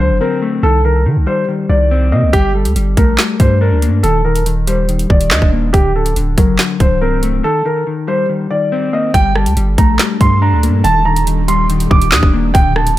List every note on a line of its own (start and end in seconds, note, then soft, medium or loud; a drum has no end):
0.00 0.12 D2 loud
0.00 0.62 D3 medium
0.00 0.63 F#3 medium
0.00 0.16 C5 medium
0.10 0.20 F#1 loud
0.21 0.63 C4 medium
0.21 0.38 A#4 medium
0.42 0.63 A3 medium
0.63 1.07 C2 loud
0.63 0.83 D#3 loud
0.63 0.80 A4 medium
0.84 1.05 D#3 medium
0.84 1.02 A#4 medium
1.06 1.18 D#3 loud
1.06 1.47 D#3 medium
1.16 1.26 C2 loud
1.27 2.12 G3 medium
1.27 1.44 C5 medium
1.48 1.68 D#3 medium
1.69 2.14 C2 loud
1.69 2.33 D#3 medium
1.69 2.10 D5 medium
1.91 2.34 C4 loud
2.12 2.24 C3 loud
2.12 2.33 A#3 medium
2.12 2.29 D#5 medium
2.23 2.33 C2 loud
2.33 2.67 G1 loud
2.33 2.54 G3 medium
2.33 2.50 G4 loud
2.33 kick loud
2.33 closed hi-hat medium
2.54 2.75 G3 medium
2.54 2.71 A4 medium
2.65 2.75 D2 loud
2.65 closed hi-hat medium
2.76 2.96 G1 loud
2.76 3.17 G3 medium
2.76 closed hi-hat medium
2.97 3.18 A#1 loud
2.97 4.04 A3 medium
2.97 3.14 A#4 medium
2.97 kick loud
2.97 closed hi-hat medium
3.18 3.39 G3 medium
3.18 snare loud
3.18 clap medium
3.18 closed hi-hat medium
3.40 3.73 G2 loud
3.40 3.82 G3 medium
3.40 3.57 C5 medium
3.40 kick loud
3.40 closed hi-hat medium
3.61 4.04 D4 loud
3.61 3.78 A#4 medium
3.72 3.89 D2 loud
3.82 4.04 A#3 medium
3.82 closed hi-hat medium
3.88 4.03 G2 loud
4.03 5.06 D#1 loud
4.03 4.24 D#3 medium
4.03 4.20 A4 loud
4.03 closed hi-hat medium
4.25 4.45 D#3 medium
4.25 4.42 A#4 medium
4.36 closed hi-hat medium
4.46 4.87 D#3 medium
4.46 closed hi-hat medium
4.67 5.74 G3 medium
4.67 4.84 C5 medium
4.67 closed hi-hat medium
4.89 5.09 D#3 medium
4.89 closed hi-hat medium
4.99 closed hi-hat medium
5.10 5.33 D#1 loud
5.10 5.74 D#3 medium
5.10 5.27 D5 medium
5.10 kick loud
5.21 closed hi-hat medium
5.31 5.41 D#2 loud
5.31 5.74 D4 loud
5.31 5.48 D#5 medium
5.31 snare loud
5.31 clap loud
5.42 5.73 D#1 loud
5.42 kick loud
5.53 5.73 A#3 medium
5.73 6.15 D1 loud
5.73 5.94 D3 medium
5.73 5.90 G4 medium
5.73 kick loud
5.73 closed hi-hat medium
5.95 6.15 D3 medium
5.95 6.12 A4 medium
6.06 closed hi-hat medium
6.16 6.37 D1 loud
6.16 6.58 D3 medium
6.16 closed hi-hat medium
6.37 6.58 F#1 loud
6.37 7.44 F#3 medium
6.37 6.55 A#4 medium
6.37 kick loud
6.37 closed hi-hat medium
6.58 6.79 D3 medium
6.58 snare loud
6.58 clap medium
6.58 closed hi-hat medium
6.80 7.42 C1 loud
6.80 7.43 D3 medium
6.80 6.97 C5 medium
6.80 kick loud
6.80 closed hi-hat medium
7.01 7.44 C4 medium
7.01 7.18 A#4 medium
7.23 7.44 A3 medium
7.23 closed hi-hat medium
7.43 7.64 D#3 loud
7.43 7.61 A4 loud
7.65 7.86 D#3 medium
7.65 7.83 A#4 medium
7.87 8.28 D#3 medium
8.08 8.92 G3 medium
8.08 8.25 C5 medium
8.29 8.49 D#3 medium
8.50 9.14 D#3 medium
8.50 8.90 D5 medium
8.72 9.14 C4 loud
8.93 9.14 A#3 medium
8.93 9.10 D#5 medium
9.14 9.48 G1 loud
9.14 12.51 A#2 medium
9.14 10.83 G3 medium
9.14 9.35 G3 medium
9.14 10.83 D4 medium
9.14 10.83 A4 loud
9.14 9.31 G5 loud
9.14 kick loud
9.14 closed hi-hat medium
9.35 9.56 G3 medium
9.35 9.52 A5 medium
9.35 cross-stick loud
9.46 9.56 D2 loud
9.46 closed hi-hat medium
9.57 9.77 G1 loud
9.57 9.98 G3 medium
9.57 closed hi-hat medium
9.78 9.99 A#1 loud
9.78 10.84 A3 medium
9.78 9.95 A#5 medium
9.78 kick loud
9.78 closed hi-hat medium
9.99 10.19 G3 medium
9.99 snare loud
9.99 clap medium
9.99 closed hi-hat medium
10.21 10.54 G2 loud
10.21 10.63 G3 medium
10.21 10.38 C6 medium
10.21 kick loud
10.21 closed hi-hat medium
10.42 10.84 D4 loud
10.42 10.59 A#5 medium
10.52 10.70 D2 loud
10.63 10.84 A#3 medium
10.63 closed hi-hat medium
10.68 10.84 G2 medium
10.84 11.87 D#1 loud
10.84 11.05 D#3 medium
10.84 12.53 D#3 medium
10.84 12.99 D4 medium
10.84 12.53 G4 medium
10.84 11.01 A5 loud
10.84 closed hi-hat medium
11.05 11.26 D#3 medium
11.05 11.22 A#5 medium
11.16 closed hi-hat medium
11.27 11.68 D#3 medium
11.27 closed hi-hat medium
11.48 12.55 G3 medium
11.48 11.65 C6 medium
11.48 closed hi-hat medium
11.70 11.90 D#3 medium
11.70 closed hi-hat medium
11.80 closed hi-hat medium
11.91 12.14 D#1 loud
11.91 12.55 D#3 medium
11.91 12.08 D6 medium
11.91 kick loud
12.02 closed hi-hat medium
12.12 12.22 D#2 loud
12.12 12.55 D4 loud
12.12 12.29 D#6 medium
12.12 snare loud
12.12 clap loud
12.23 12.53 D#1 loud
12.23 kick loud
12.33 12.54 A#3 medium
12.54 12.96 D1 loud
12.54 12.75 D3 medium
12.54 12.99 F#3 medium
12.54 12.99 C4 medium
12.54 12.99 A4 loud
12.54 12.71 G5 loud
12.54 kick loud
12.54 closed hi-hat medium
12.76 12.96 D3 medium
12.76 12.93 A5 medium
12.76 cross-stick loud
12.87 closed hi-hat medium